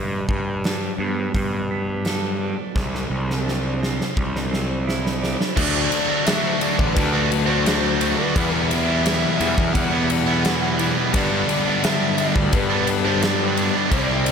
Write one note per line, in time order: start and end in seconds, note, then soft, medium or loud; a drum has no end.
0.00 0.23 G2 loud
0.00 1.34 G3 medium
0.29 0.88 G2 medium
0.29 kick medium
0.64 2.41 D4 medium
0.64 snare loud
0.64 open hi-hat soft
0.99 1.29 G2 medium
0.99 1.70 B3 medium
1.34 2.53 G2 medium
1.34 2.76 G3 medium
1.34 kick medium
1.34 open hi-hat soft
1.71 2.76 B3 medium
2.05 2.76 A4 medium
2.05 snare medium
2.05 open hi-hat soft
2.41 2.79 D4 medium
2.75 3.05 C2 medium
2.75 4.52 C3 medium
2.75 kick medium
2.75 snare soft
2.95 snare soft
3.10 3.99 C2 medium
3.30 snare soft
3.46 5.21 D4 medium
3.46 snare medium
3.82 4.50 C4 medium
3.82 snare medium
4.01 snare medium
4.17 5.34 C2 medium
4.17 5.57 G3 medium
4.17 kick medium
4.36 snare medium
4.51 5.57 C4 medium
4.51 snare medium
4.87 5.57 E4 medium
4.87 snare medium
5.06 snare medium
5.22 5.57 D4 medium
5.22 snare medium
5.41 snare medium
5.56 5.86 D2 loud
5.56 5.90 D3 medium
5.56 6.95 D3 medium
5.56 5.76 F#3 medium
5.56 5.74 A3 loud
5.56 6.95 A3 medium
5.56 5.72 D4 loud
5.56 6.08 F#4 medium
5.56 8.34 A4 medium
5.56 8.34 D5 medium
5.56 6.30 D5 medium
5.56 11.11 F#5 medium
5.56 8.34 D6 medium
5.56 kick loud
5.56 crash loud
5.60 6.96 D4 medium
5.74 5.91 F#3 medium
5.74 5.91 A3 medium
5.74 5.92 D4 medium
5.91 6.24 D3 medium
5.91 6.10 F#3 medium
5.91 6.08 A3 medium
5.91 6.07 D4 medium
5.91 ride medium
6.08 6.26 F#3 medium
6.08 6.25 A3 medium
6.08 6.26 D4 medium
6.08 6.28 F#4 medium
6.25 6.58 D3 medium
6.25 6.60 F#3 medium
6.25 6.60 A3 loud
6.25 6.61 D4 loud
6.25 6.63 F#4 loud
6.25 6.62 E5 medium
6.25 snare loud
6.25 ride loud
6.59 7.29 D3 medium
6.59 7.14 F#3 medium
6.59 7.13 A3 medium
6.59 7.12 D4 medium
6.59 6.93 D5 medium
6.59 ride medium
6.64 6.77 F#4 medium
6.78 6.94 A1 medium
6.78 muted distorted electric guitar stroke soft
6.78 kick loud
6.94 8.13 D2 loud
6.94 8.34 D3 medium
6.94 7.45 B4 medium
6.94 kick loud
6.94 ride loud
6.98 8.35 A3 medium
6.98 8.36 D4 medium
7.13 7.29 F#3 medium
7.13 7.30 A3 medium
7.13 7.31 D4 medium
7.13 7.30 F#4 medium
7.30 7.64 D3 medium
7.30 7.49 F#3 medium
7.30 7.48 A3 medium
7.30 7.47 D4 medium
7.30 muted distorted electric guitar stroke soft
7.30 ride medium
7.45 7.65 A3 medium
7.45 7.65 D4 medium
7.45 7.65 F#4 medium
7.45 7.62 C5 medium
7.50 7.65 F#3 medium
7.63 7.99 D3 loud
7.63 8.00 F#3 loud
7.63 8.01 A3 loud
7.63 8.02 D4 loud
7.63 8.00 F#4 loud
7.63 8.15 C5 medium
7.63 ride loud
7.67 snare loud
8.00 8.33 D3 medium
8.00 8.19 F#3 medium
8.00 8.18 A3 medium
8.00 8.17 D4 medium
8.00 8.16 F#4 medium
8.00 ride medium
8.15 8.34 D4 medium
8.15 8.33 F#4 medium
8.15 8.65 B4 medium
8.19 8.35 F#3 medium
8.19 8.34 A3 medium
8.34 9.72 E2 medium
8.34 9.23 E2 loud
8.34 9.73 B2 loud
8.34 8.71 E3 medium
8.34 8.55 G3 medium
8.34 8.54 B3 medium
8.34 8.52 E4 loud
8.34 11.10 G4 medium
8.34 11.10 E5 medium
8.34 11.10 B5 medium
8.34 kick loud
8.34 ride loud
8.39 9.74 E3 medium
8.54 8.73 G3 medium
8.54 8.73 B3 medium
8.54 8.73 E4 medium
8.67 9.35 E5 loud
8.67 ride medium
8.72 9.05 E3 medium
8.72 8.92 G3 medium
8.72 8.90 B3 medium
8.72 8.88 E4 medium
8.90 9.06 G3 medium
8.90 9.07 B3 medium
8.90 9.07 E4 medium
9.03 9.37 E3 loud
9.03 ride loud
9.07 9.39 E3 loud
9.07 9.40 G3 loud
9.07 9.41 B3 loud
9.07 9.41 E4 medium
9.07 snare loud
9.38 9.55 E2 loud
9.38 10.09 E3 medium
9.38 9.93 G3 medium
9.38 9.92 B3 medium
9.38 9.73 E5 loud
9.38 ride medium
9.42 9.91 E4 medium
9.56 9.72 E2 medium
9.56 muted distorted electric guitar stroke medium
9.56 kick loud
9.73 11.11 E2 medium
9.73 10.92 E2 loud
9.73 11.12 B2 medium
9.73 10.74 F#5 loud
9.73 kick loud
9.73 ride loud
9.78 11.13 E3 medium
9.92 10.10 G3 medium
9.92 10.10 B3 medium
9.92 10.12 E4 medium
10.09 10.44 E3 medium
10.09 10.28 G3 medium
10.09 10.27 B3 medium
10.09 10.26 E4 medium
10.09 muted distorted electric guitar stroke soft
10.09 ride medium
10.27 10.45 G3 medium
10.27 10.45 B3 medium
10.27 10.45 E4 medium
10.45 10.78 E3 medium
10.45 10.80 G3 loud
10.45 10.79 B3 loud
10.45 10.80 E4 medium
10.45 snare loud
10.45 ride medium
10.79 11.12 E3 medium
10.79 10.99 G3 medium
10.79 10.97 B3 medium
10.79 10.96 E4 medium
10.79 ride medium
10.97 11.14 G3 medium
10.97 11.13 B3 medium
10.97 11.12 E4 medium
11.13 12.50 G2 medium
11.13 11.66 G2 loud
11.13 11.43 G2 loud
11.13 11.46 D3 loud
11.13 12.51 D3 medium
11.13 11.32 G3 medium
11.13 12.56 G3 medium
11.13 11.31 B3 medium
11.13 11.30 D4 medium
11.13 13.89 A4 medium
11.13 11.86 D5 medium
11.13 14.32 D5 medium
11.13 13.89 G5 medium
11.13 13.90 B5 medium
11.13 kick loud
11.13 ride loud
11.30 11.48 G3 medium
11.30 11.48 B3 medium
11.30 11.49 D4 medium
11.48 11.82 D3 medium
11.48 11.68 G3 medium
11.48 11.66 B3 medium
11.48 11.65 D4 medium
11.48 ride medium
11.66 11.83 G3 medium
11.66 11.83 B3 medium
11.66 11.84 D4 medium
11.82 12.52 G2 medium
11.82 12.17 D3 loud
11.82 12.19 G3 loud
11.82 12.18 B3 medium
11.82 12.20 D4 loud
11.82 12.16 E5 medium
11.82 snare loud
11.82 ride loud
12.18 12.86 D3 medium
12.18 12.71 G3 medium
12.18 12.70 B3 medium
12.18 12.70 D4 medium
12.18 12.54 D5 medium
12.18 ride medium
12.36 12.50 D2 medium
12.36 muted distorted electric guitar stroke medium
12.36 kick medium
12.53 13.69 G2 loud
12.53 13.89 G2 medium
12.53 13.90 D3 loud
12.53 13.91 G3 loud
12.53 13.06 B4 medium
12.53 kick loud
12.53 ride medium
12.70 12.87 G3 medium
12.70 12.88 B3 medium
12.70 12.89 D4 medium
12.87 13.22 D3 medium
12.87 13.06 G3 medium
12.87 13.05 B3 medium
12.87 13.04 D4 medium
12.87 muted distorted electric guitar stroke soft
12.87 ride medium
13.05 13.22 G3 medium
13.05 13.22 B3 medium
13.05 13.24 D4 medium
13.05 13.23 C5 medium
13.22 13.89 G2 medium
13.22 13.56 D3 loud
13.22 13.57 G3 medium
13.22 13.58 B3 medium
13.22 13.59 D4 loud
13.22 13.71 D5 medium
13.22 snare loud
13.22 ride medium
13.57 13.90 D3 medium
13.57 13.75 G3 medium
13.57 13.75 B3 medium
13.57 13.74 D4 medium
13.57 ride medium
13.74 13.90 G3 medium
13.74 13.90 B3 medium
13.74 13.93 D4 medium
13.89 14.32 C2 loud
13.89 14.32 C3 medium
13.89 14.25 C3 medium
13.89 14.09 G3 medium
13.89 14.32 G3 medium
13.89 14.09 C4 loud
13.89 14.32 G4 medium
13.89 14.32 D5 loud
13.89 14.32 E5 medium
13.89 14.32 C6 loud
13.89 kick loud
13.89 ride loud
13.93 14.32 C4 loud
13.93 14.07 E4 loud
14.08 14.26 G3 medium
14.08 14.26 C4 medium
14.08 14.27 E4 medium
14.26 14.32 C3 medium
14.26 14.32 G3 medium
14.26 14.32 C4 medium
14.26 14.32 E4 medium
14.26 ride medium